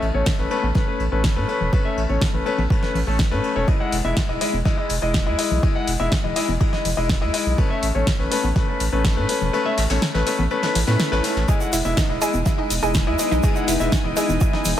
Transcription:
0.02 A1, ride
0.14 A1 A3 C#4 C#5, high conga
0.26 kick, snare, ride
0.38 A1 A3 C#4 B4, snare
0.50 A3 C#4 B4, ride
0.63 A1, high conga
0.74 A3 C#4 B4, kick, snare, ride, low conga
0.87 A3 C#4 B4
1.00 A1, ride
1.12 A1 A3 C#4 B4
1.24 kick, snare, ride
1.36 A2 A3 C#4 B4, ride
1.48 A3 C#4 B4, ride
1.60 E1, low conga
1.73 A3 C#4 B4, kick, ride
1.85 A3 C#4 E5
1.97 A1, ride
2.09 A1 A3 C#4 C#5, ride, high conga
2.22 kick, snare, ride
2.34 A1 A3 C#4 B4, low conga
2.46 A3 C#4 B4, ride
2.58 A1, ride, high conga, low conga
2.70 A3 C#4 B4, kick, ride
2.83 A3 C#4 B4, snare
2.95 A1, open hi-hat, low conga
3.07 A1 A3 C#4 A4
3.19 kick, snare, ride
3.31 A2 A3 C#4 B4, snare
3.43 ride
3.56 E1 A3 C#4 C#5
3.68 E4 D#5, kick, ride
3.80 G#3 E4 F#5
3.92 E1, open hi-hat, ride
4.04 E1 G#3 E4 E5, high conga
4.17 kick, snare, ride
4.28 E1 G#3 E4 D#5, snare
4.41 G#3 E4 D#5, open hi-hat, ride
4.53 E1, high conga
4.65 G#3 E4 D#5, kick, snare, ride, low conga
4.78 G#3 E4 D#5
4.89 E1, open hi-hat, ride
5.02 E1 G#3 E4 D#5
5.14 kick, snare, ride
5.26 E2 G#3 E4 D#5, ride
5.38 G#3 E4 D#5, open hi-hat, ride
5.51 B1, low conga
5.63 G#3 E4 D#5, kick, ride
5.75 G#3 E4 F#5
5.87 E1, open hi-hat, ride
6.00 E1 G#3 E4 E5, ride, high conga
6.12 kick, snare, ride
6.24 E1 G#3 E4 D#5, low conga
6.36 G#3 E4 D#5, open hi-hat, ride
6.48 E1, ride, high conga, low conga
6.60 G#3 E4 D#5, kick, ride
6.73 G#3 E4 D#5, snare
6.85 E1, open hi-hat, low conga
6.97 E1 G#3 E4 D#5
7.09 kick, snare, ride
7.21 E2 G#3 E4 D#5, snare
7.34 G#3 E4 D#5, open hi-hat, ride
7.46 B1
7.58 A3 C#4 B4, kick, ride
7.70 A3 C#4 E5
7.83 A1, open hi-hat, ride
7.95 A1 A3 C#4 C#5, high conga
8.07 kick, snare, ride
8.19 A1 A3 C#4 B4, snare
8.31 A3 C#4 B4, open hi-hat, ride
8.44 A1, high conga
8.56 A3 C#4 B4, kick, snare, ride, low conga
8.68 A3 C#4 B4
8.80 A1, open hi-hat, ride
8.92 A1 A3 C#4 B4
9.05 kick, snare, ride
9.17 A2 A3 C#4 B4, ride
9.28 A3 C#4 B4, open hi-hat, ride
9.41 E1, low conga
9.53 A3 C#4 B4, ride
9.66 A3 C#4 E5
9.77 A1, snare, open hi-hat, ride
9.89 A1 A3 C#4 C#5, snare, open hi-hat, ride, high conga
10.02 snare, ride
10.14 A1 A3 C#4 B4, snare, ride, low conga
10.26 A3 C#4 B4, snare, open hi-hat, ride
10.39 A1, ride, high conga, low conga
10.50 A3 C#4 B4, ride, swell
10.63 A3 C#4 B4, snare, ride
10.75 A1, snare, open hi-hat, ride, low conga
10.87 A2 A3 C#4 B4, snare, ride, high conga
11.00 snare, ride
11.12 A1 A3 C#4 B4, snare, ride
11.24 A3 C#4 B4, snare, open hi-hat, ride
11.36 A1, snare, ride
11.48 E3 G#3 B3 D#4 E4 G#4 D#5 G#5, kick, ride, shaker
11.60 G#3 E4 F#5, shaker
11.72 E1 E4, open hi-hat, ride, shaker
11.84 E1 G#3 E4 E5, high conga, shaker
11.97 D#4, kick, snare, ride, shaker
12.09 E1 G#3 E4 D#5, snare
12.21 G#3 E4 G#4 D#5, open hi-hat, ride, shaker
12.34 E1, high conga, shaker
12.45 G#3 E4 D#5, kick, snare, ride, low conga, shaker
12.58 G#3 D#4 E4 D#5
12.70 E1, open hi-hat, ride, shaker
12.82 E1 G#3 E4 G#4 D#5, shaker
12.94 kick, snare, ride, shaker
13.07 E2 G#3 E4 D#5, ride
13.19 G#3 E4 D#5, open hi-hat, ride, shaker
13.31 B1 D#4, low conga, shaker
13.43 G#3 E4 G#4 D#5, kick, ride, shaker
13.56 G#3 E4 F#5, shaker
13.68 E1 E4, open hi-hat, ride, shaker
13.80 E1 G#3 E4 E5, ride, high conga, shaker
13.92 D#4, kick, snare, ride, shaker
14.04 E1 G#3 E4 D#5, low conga
14.16 G#3 E4 G#4 D#5, open hi-hat, ride, shaker
14.29 E1, ride, high conga, low conga, shaker
14.40 G#3 E4 D#5, kick, ride, shaker
14.53 G#3 D#4 E4 D#5, snare
14.65 E1, open hi-hat, low conga, shaker

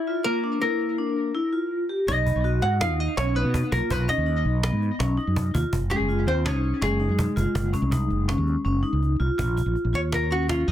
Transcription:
Already playing: E4 E5
0.07 F4
0.24 A#3 A#4
0.44 D4
0.62 A#3 E4 A#4
0.98 D4
1.35 E4
1.53 F4
1.89 G4
2.08 B1 D#4 D#5, cajon bass
2.26 B3, cajon bass
2.36 B1
2.44 F#4, cajon slap
2.62 G#2 F#4 F#5, cajon slap
2.81 D#4 F4 F5, cajon slap
2.89 D#2
2.99 D#4 D#5, cajon slap
3.17 B1 C#4 C#5, cajon slap
3.35 B3 D#4 B4, cajon slap
3.45 B2
3.54 cajon bass
3.72 B1 A#3 F4 A#4, cajon bass
3.90 B1 B3 B4, cajon bass
4.08 C#4 D#4 D#5, cajon bass
4.18 D#2
4.26 D#4, cajon slap
4.45 B1, cajon slap
4.63 B3, cajon slap
4.72 G#2
4.82 cajon slap
4.99 B1 C#4, cajon slap
5.17 D#4, cajon slap
5.27 F#2
5.36 cajon bass
5.54 D#2 F4, cajon bass
5.73 F#1, cajon bass
5.90 G#3 C#4 G#4, cajon bass, cajon slap
6.00 F#1
6.09 F4, cajon slap
6.27 D#2 C4 C5
6.45 C#4 D#4 C#5, cajon slap
6.54 C2
6.64 cajon slap
6.82 F#1 G#3 C#4 G#4, cajon slap
7.00 D#4, cajon slap
7.09 F#2
7.19 cajon bass
7.36 F#1 F4, cajon bass
7.55 F#1, cajon bass
7.73 C#4, cajon bass, cajon slap
7.82 C2
7.91 D#4, cajon bass
8.10 F#1, cajon slap
8.28 C#4, cajon slap
8.38 D#2
8.47 cajon slap
8.65 F#1 C#4, cajon slap
8.83 D#4, cajon slap
8.93 C#2
9.03 cajon slap
9.20 C2 F4, cajon slap
9.38 A#1 F4, cajon bass
9.57 F4, cajon bass
9.66 A#1
9.76 cajon slap
9.85 A#1
9.93 D#2 F4 C#5
10.12 A#4, cajon slap
10.31 C#4 F#4
10.49 F4, cajon slap
10.68 F2 D#4 F4, cajon slap

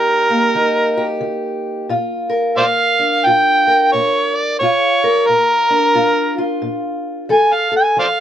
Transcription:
Already playing: D#3 A#3 D#4 G4 A#4
0.30 A#3
0.55 D#3 D#4
0.98 G4
1.21 D#3
1.89 A#2 F4
2.30 A#4
2.56 A#2 C5 D5 F5
2.99 D4
3.25 A#2 F4 G5
3.67 A#4
3.92 A#2 C#5
4.35 D5
4.59 A#2 F4 C#5
5.04 A#4
5.27 A#2 A#4
5.70 D4
5.95 A#2 F4
6.38 F4
6.62 A#2
7.29 F3 A4 G#5
7.53 F5
7.72 A4
7.76 G#5
7.97 F3 C5 D5 F5

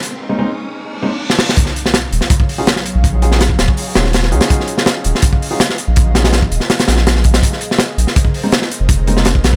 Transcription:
Already playing: riser
0.03 closed hi-hat
0.29 G#3 A#3 C4 C#4 D#4
0.39 G#3 A#3 C4 C#4 D#4
0.84 reverse cymbal
1.02 G#3 A#3 C4 C#4 D#4
1.30 snare
1.39 snare
1.49 snare
1.57 F#3 G#4 C#5 F5, kick, closed hi-hat, impact
1.66 snare
1.76 closed hi-hat
1.86 snare
1.94 snare, closed hi-hat
2.12 D#1, closed hi-hat
2.21 snare
2.30 kick, closed hi-hat
2.40 kick
2.49 open hi-hat
2.58 C#4 D#4 F4 F#4 G#4
2.67 snare, closed hi-hat
2.76 snare
2.86 closed hi-hat
2.95 A#1
3.04 kick, closed hi-hat
3.22 C#4 D#4 F4 F#4 G#4, closed hi-hat
3.31 C#4 D#4 F4 F#4 G#4, snare
3.40 snare, closed hi-hat
3.50 kick
3.59 D#1, snare, closed hi-hat
3.68 kick
3.77 open hi-hat
3.95 D#1 C#4 D#4 F4 F#4 G#4, snare, closed hi-hat
4.04 snare
4.13 snare, closed hi-hat
4.23 snare
4.32 C#2 C#4 D#4 F4 F#4 G#4, closed hi-hat
4.41 snare, closed hi-hat
4.50 D#5, kick, closed hi-hat
4.60 snare
4.68 closed hi-hat
4.78 snare
4.86 snare, closed hi-hat
5.04 D#1, closed hi-hat
5.15 snare
5.22 kick, closed hi-hat
5.33 kick
5.42 open hi-hat
5.51 C#4 D#4 F4 F#4 G#4
5.60 snare, closed hi-hat
5.70 snare
5.78 closed hi-hat
5.88 A#1
5.96 kick, closed hi-hat
6.15 C#4 D#4 F4 F#4 G#4, snare, closed hi-hat
6.24 C#4 D#4 F4 F#4 G#4, snare, closed hi-hat
6.33 snare, closed hi-hat
6.42 kick
6.51 D#1, closed hi-hat
6.60 snare
6.70 snare, closed hi-hat
6.79 snare, closed hi-hat
6.88 A#1 C#4 D#4 F4 F#4 G#4, snare, closed hi-hat
6.97 snare
7.07 snare, closed hi-hat
7.15 snare
7.24 kick, closed hi-hat
7.34 snare, closed hi-hat
7.43 A#4 C5, kick, closed hi-hat
7.52 snare
7.61 closed hi-hat
7.71 snare
7.79 snare, closed hi-hat
7.98 A#1, closed hi-hat
8.07 snare
8.16 kick, closed hi-hat
8.25 kick
8.34 open hi-hat
8.43 G#3 A#3 C4 C#4 D#4
8.52 snare, closed hi-hat
8.62 snare
8.71 closed hi-hat
8.80 F1
8.89 kick, closed hi-hat
9.07 G#3 A#3 C4 C#4 D#4, closed hi-hat
9.17 G#3 A#3 C4 C#4 D#4, snare
9.25 snare, closed hi-hat
9.35 kick
9.44 A#1, snare, closed hi-hat
9.53 kick

